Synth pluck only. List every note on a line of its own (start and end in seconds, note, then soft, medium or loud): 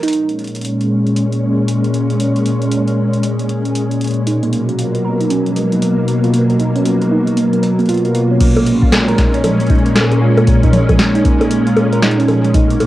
0.03 0.08 D#4 loud
4.27 4.35 D#4 medium
4.43 4.51 A#3 medium
4.53 4.67 A#3 loud
4.69 4.78 A#3 medium
4.79 4.87 F4 medium
4.95 5.04 A#3 medium
5.04 5.13 A#4 medium
5.20 5.26 D#4 medium
5.30 5.44 C#4 medium
5.46 5.51 F3 medium
5.56 5.71 G#3 loud
5.72 5.77 D#4 medium
5.82 5.96 A#3 medium
5.98 6.07 A#3 loud
6.08 6.23 A#3 medium
6.24 6.29 F4 medium
6.34 6.49 A#3 medium
6.50 6.55 A#4 medium
6.59 6.68 D#4 medium
6.76 6.84 C#4 medium
6.85 6.94 F3 medium
7.01 7.11 G#3 loud
7.11 7.20 D#4 medium
7.27 7.36 A#3 medium
7.37 7.51 A#3 loud
7.53 7.62 A#3 medium
7.63 7.78 A#4 medium
7.79 7.88 A#3 medium
7.89 8.03 F4 loud
8.05 8.14 A#3 medium
8.15 8.23 F4 loud
8.31 8.36 C#4 medium
8.41 8.55 A#3 medium
8.57 8.65 A#3 loud
8.67 8.82 A#3 medium
8.83 8.88 F4 medium
8.92 9.08 A#3 medium
9.08 9.14 A#4 medium
9.18 9.27 D#4 medium
9.34 9.43 C#4 medium
9.44 9.53 F3 medium
9.60 9.69 G#3 loud
9.70 9.78 D#4 medium
9.86 9.95 A#3 medium
9.96 10.10 A#3 loud
10.12 10.21 A#3 medium
10.22 10.30 F4 medium
10.38 10.47 A#3 medium
10.48 10.56 A#4 medium
10.63 10.69 D#4 medium
10.73 10.88 C#4 medium
10.89 10.95 F3 medium
10.99 11.14 G#3 loud
11.15 11.20 D#4 medium
11.25 11.39 A#3 medium
11.41 11.50 A#3 loud
11.51 11.66 A#3 medium
11.67 11.72 F4 medium
11.77 11.92 A#3 medium
11.93 11.98 A#4 medium
12.03 12.11 D#4 medium
12.19 12.27 C#4 medium
12.29 12.37 F3 medium
12.45 12.54 G#3 loud
12.54 12.63 D#4 medium
12.70 12.79 A#3 medium
12.80 12.87 A#3 loud